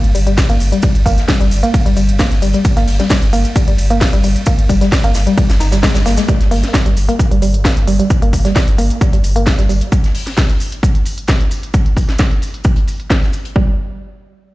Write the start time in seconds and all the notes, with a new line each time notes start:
0.04 G1, closed hi-hat
0.15 G1 G3, open hi-hat, shaker
0.27 G1 G3, closed hi-hat
0.38 kick, snare, closed hi-hat, ride, shaker
0.50 G1 A#3, closed hi-hat
0.60 G1, open hi-hat, shaker
0.72 G3, closed hi-hat
0.82 G3, kick, closed hi-hat, ride, shaker
0.95 G1, closed hi-hat
1.06 G1 A#3, kick, open hi-hat, shaker
1.18 snare, closed hi-hat
1.28 G3, kick, snare, closed hi-hat, ride, shaker
1.41 G1 G3, closed hi-hat
1.51 G1, open hi-hat, shaker
1.63 A#3, closed hi-hat
1.74 kick, closed hi-hat, ride, shaker
1.86 G1 G3, closed hi-hat
1.97 G1 G3, open hi-hat, shaker
2.09 G1, closed hi-hat
2.19 A#3, kick, snare, closed hi-hat, ride, shaker
2.31 G1, snare, closed hi-hat
2.42 G1 G3, open hi-hat, shaker
2.53 G3, closed hi-hat
2.65 kick, closed hi-hat, ride, shaker
2.77 G1 A#3, snare, closed hi-hat
2.88 G1, open hi-hat
3.00 G3, snare, closed hi-hat
3.10 G3, kick, snare, closed hi-hat, ride, shaker
3.22 G1, closed hi-hat
3.33 G1 A#3, open hi-hat, shaker
3.44 closed hi-hat
3.56 G3, kick, closed hi-hat, ride, shaker
3.68 G1 G3, closed hi-hat
3.78 G1, open hi-hat, shaker
3.90 G1 A#3, closed hi-hat
4.01 kick, snare, closed hi-hat, ride, shaker
4.13 G1 G3, closed hi-hat
4.24 G1 G3, open hi-hat, shaker
4.36 closed hi-hat
4.46 A#3, kick, closed hi-hat, ride, shaker
4.59 G1, closed hi-hat
4.69 G1 G3, kick, open hi-hat, shaker
4.81 G3, snare, closed hi-hat
4.92 kick, snare, closed hi-hat, ride, shaker
5.04 G1 A#3, closed hi-hat
5.14 G1, snare, open hi-hat, shaker
5.27 G3, closed hi-hat
5.38 G3, kick, closed hi-hat, ride, shaker
5.50 G1, snare, closed hi-hat, shaker
5.60 G1 D#4, snare, open hi-hat, shaker
5.71 G1 G3, snare, closed hi-hat, shaker
5.83 G#3, kick, snare, closed hi-hat, ride, shaker
5.94 G1 G3, snare, closed hi-hat, shaker
6.06 G1 A#3, snare, open hi-hat, shaker
6.17 G#3, snare, closed hi-hat, shaker
6.28 G3, kick, closed hi-hat, shaker
6.41 G1, snare, closed hi-hat
6.51 G1 A#3, open hi-hat
6.63 snare, closed hi-hat
6.73 G3, kick, snare, closed hi-hat, shaker
6.86 G1 G3, closed hi-hat
6.97 G1, open hi-hat, shaker
7.09 A#3, closed hi-hat
7.19 kick, closed hi-hat, shaker
7.31 G1 G3, closed hi-hat
7.42 G1 G3, open hi-hat, shaker
7.54 G1, closed hi-hat
7.64 A#3, kick, snare, closed hi-hat, shaker
7.77 G1, closed hi-hat
7.87 G1 G3, open hi-hat, shaker
8.00 G3, closed hi-hat
8.10 kick, closed hi-hat, shaker
8.22 G1 A#3, closed hi-hat
8.33 G1, kick, open hi-hat, shaker
8.45 G3, snare, closed hi-hat
8.56 G3, kick, snare, closed hi-hat, shaker
8.68 G1, closed hi-hat
8.78 G1 A#3, open hi-hat, shaker
8.90 closed hi-hat
9.01 G3, kick, closed hi-hat, shaker
9.13 G1 G3, closed hi-hat
9.24 G1, open hi-hat, shaker
9.36 G1 A#3, closed hi-hat
9.47 kick, snare, closed hi-hat, shaker
9.59 G1 G3, snare, closed hi-hat
9.69 G1 G3, open hi-hat, shaker
9.81 closed hi-hat
9.92 kick, closed hi-hat, shaker
10.04 snare, closed hi-hat
10.15 open hi-hat
10.27 snare, closed hi-hat
10.37 kick, snare, closed hi-hat, shaker
10.49 closed hi-hat
10.60 open hi-hat, shaker
10.72 closed hi-hat
10.83 kick, closed hi-hat, shaker
10.95 closed hi-hat
11.06 open hi-hat, shaker
11.18 closed hi-hat
11.28 kick, snare, closed hi-hat, shaker
11.40 closed hi-hat
11.51 open hi-hat, shaker
11.63 closed hi-hat
11.74 kick, closed hi-hat, shaker
11.86 closed hi-hat
11.97 kick, open hi-hat, shaker
12.09 snare, closed hi-hat
12.19 kick, snare, closed hi-hat, shaker
12.31 closed hi-hat
12.42 open hi-hat, shaker
12.54 closed hi-hat
12.64 kick, closed hi-hat, shaker
12.76 closed hi-hat
12.88 open hi-hat, shaker
13.00 closed hi-hat
13.10 kick, snare, closed hi-hat, shaker
13.22 snare, closed hi-hat
13.33 open hi-hat, shaker
13.45 closed hi-hat
13.56 G3, kick